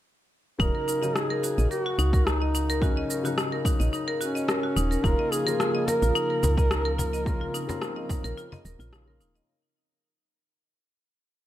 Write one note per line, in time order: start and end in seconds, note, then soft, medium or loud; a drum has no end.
0.59 0.70 D#1 medium
0.59 0.98 C#3 medium
0.59 0.99 F#3 medium
0.59 0.73 D#4 medium
0.59 0.99 D#4 medium
0.59 1.17 A#4 loud
0.59 kick loud
0.59 cabasa soft
0.75 0.86 A#4 medium
0.88 0.96 D#4 medium
0.88 cabasa medium
1.01 1.11 C#3 medium
1.01 1.12 F#3 medium
1.01 1.12 D#4 medium
1.01 1.15 D#5 medium
1.01 cabasa soft
1.16 1.29 D#4 medium
1.16 1.70 G#4 loud
1.16 cross-stick medium
1.16 cabasa soft
1.30 1.42 A#4 medium
1.44 1.57 F#4 medium
1.44 cabasa medium
1.58 1.67 A#1 medium
1.58 1.70 D#5 medium
1.58 cabasa soft
1.71 2.28 F#4 loud
1.71 1.79 A#4 medium
1.71 cabasa soft
1.86 1.98 F#4 medium
1.98 3.04 C#2 medium
1.98 2.12 D#4 loud
1.98 cabasa medium
2.13 2.25 A#4 medium
2.13 kick loud
2.13 cabasa soft
2.27 2.82 D#4 medium
2.27 2.35 D#4 medium
2.27 cross-stick medium
2.27 cabasa soft
2.42 2.54 D#5 medium
2.55 2.68 D#4 medium
2.55 cabasa medium
2.70 2.81 A#4 medium
2.70 cabasa soft
2.81 3.20 C#3 medium
2.81 3.21 F#3 medium
2.81 3.62 C#4 medium
2.81 3.21 D#4 medium
2.81 2.95 F#4 medium
2.81 kick loud
2.81 cabasa soft
2.97 3.09 D#5 medium
3.10 3.18 A#4 medium
3.10 cabasa medium
3.23 3.33 C#3 medium
3.23 3.34 F#3 medium
3.23 3.35 D#4 medium
3.23 3.37 F#4 medium
3.23 cabasa soft
3.38 3.51 D#4 medium
3.38 cross-stick medium
3.38 cabasa soft
3.52 3.64 A#4 medium
3.65 3.74 D#4 medium
3.65 kick loud
3.65 cabasa medium
3.80 3.89 A#1 medium
3.80 3.92 D#5 medium
3.80 cabasa soft
3.93 4.07 D#4 medium
3.93 cabasa soft
4.08 4.19 A#4 loud
4.20 5.06 C#4 loud
4.20 4.34 F#4 medium
4.20 cabasa medium
4.35 4.47 D#5 medium
4.35 cabasa soft
4.48 4.57 A#4 medium
4.48 cross-stick loud
4.48 cabasa soft
4.63 4.76 F#4 medium
4.76 4.97 D#1 medium
4.76 4.90 D#4 medium
4.76 cabasa medium
4.91 5.03 A#4 medium
4.91 cabasa soft
5.03 5.15 D#1 medium
5.03 5.42 C#3 medium
5.03 9.45 C#3 medium
5.03 9.45 F3 medium
5.03 5.43 A#3 medium
5.03 7.24 A#3 medium
5.03 5.13 D#4 medium
5.03 9.45 F4 medium
5.03 5.44 F4 medium
5.03 5.33 A#4 loud
5.03 kick loud
5.03 cabasa soft
5.19 5.31 D#5 medium
5.32 5.46 D#4 medium
5.32 5.89 G#4 loud
5.32 cabasa medium
5.45 5.56 C#3 medium
5.45 5.56 A#3 medium
5.45 5.57 F4 medium
5.45 5.58 A#4 loud
5.45 cabasa soft
5.60 5.73 F4 medium
5.60 cross-stick medium
5.60 cabasa soft
5.75 5.86 D#5 medium
5.88 8.93 A#4 loud
5.88 5.96 A#4 medium
5.88 cajon slap medium
5.88 cabasa medium
6.02 6.12 A#1 medium
6.02 6.15 F4 medium
6.02 cabasa soft
6.15 6.29 D#4 loud
6.15 cabasa soft
6.30 6.42 A#4 medium
6.43 7.48 C#2 medium
6.43 6.51 D#4 medium
6.43 cajon bass medium
6.43 cabasa medium
6.58 6.70 D#5 medium
6.58 kick loud
6.58 cabasa soft
6.71 6.85 D#4 medium
6.71 cross-stick loud
6.71 cabasa soft
6.85 6.97 A#4 medium
6.98 7.12 F4 medium
6.98 cajon bass medium
6.98 cabasa medium
7.13 7.25 D#5 medium
7.13 cabasa soft
7.25 7.65 C#3 medium
7.25 7.65 A#3 medium
7.25 9.46 C4 medium
7.25 7.66 F4 medium
7.25 7.35 A#4 medium
7.25 kick loud
7.25 cabasa soft
7.41 7.53 F4 medium
7.54 7.67 D#4 loud
7.54 cabasa medium
7.67 7.78 C#3 medium
7.67 7.78 A#3 medium
7.67 7.79 F4 medium
7.67 7.81 A#4 medium
7.67 cajon bass medium
7.67 cross-stick soft
7.67 cajon slap medium
7.67 cabasa soft
7.82 7.90 D#4 medium
7.82 cross-stick medium
7.82 cabasa soft
7.96 8.09 D#5 medium
8.09 8.24 D#4 medium
8.09 kick loud
8.09 cajon bass medium
8.09 cajon slap medium
8.09 cabasa medium
8.24 8.34 A#1 medium
8.24 8.36 A#4 medium
8.24 cajon slap soft
8.24 cabasa soft
8.38 8.51 F4 medium
8.38 cabasa soft
8.52 8.64 D#5 medium
8.52 cajon bass medium
8.65 8.76 D#1 medium
8.65 8.74 A#4 medium
8.65 cabasa medium
8.79 9.22 A#1 loud
8.79 8.92 F4 medium
8.79 cabasa soft
8.92 9.04 C#3 medium
8.92 9.04 A#3 medium
8.92 9.06 D#4 medium
8.92 9.05 F4 medium
8.92 cross-stick loud
8.92 cabasa soft
9.06 9.45 C#3 medium
9.06 9.45 A#3 medium
9.06 9.45 F4 medium
9.06 9.19 A#4 medium
9.21 9.41 D#1 medium
9.21 9.29 D#4 medium
9.21 cabasa medium
9.36 9.48 D#5 medium
9.36 cabasa soft